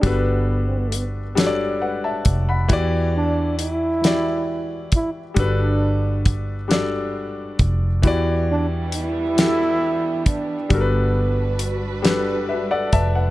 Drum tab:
HH |x-xx-x|x-xx-x|x-xx-x|x-xx-x|
SD |---o--|---o--|---o--|---o--|
BD |o----o|o----o|o-o--o|o----o|

HH |x-xx-x|
SD |---o--|
BD |o----o|